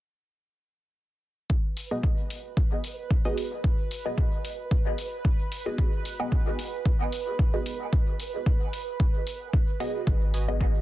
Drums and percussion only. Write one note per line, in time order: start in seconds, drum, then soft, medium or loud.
1.50 kick loud
1.77 open hi-hat medium
2.03 kick loud
2.30 open hi-hat medium
2.57 kick loud
2.84 open hi-hat medium
3.11 kick loud
3.38 open hi-hat medium
3.64 kick loud
3.91 open hi-hat medium
4.18 kick loud
4.45 open hi-hat medium
4.71 kick loud
4.98 open hi-hat medium
5.25 kick loud
5.52 open hi-hat medium
5.78 kick loud
6.05 open hi-hat medium
6.32 kick loud
6.59 open hi-hat medium
6.86 kick loud
7.12 open hi-hat medium
7.39 kick loud
7.66 open hi-hat medium
7.93 kick loud
8.20 open hi-hat medium
8.46 kick loud
8.73 open hi-hat medium
9.00 kick loud
9.27 open hi-hat medium
9.53 kick loud
9.80 open hi-hat medium
10.07 kick loud
10.34 open hi-hat medium
10.61 kick loud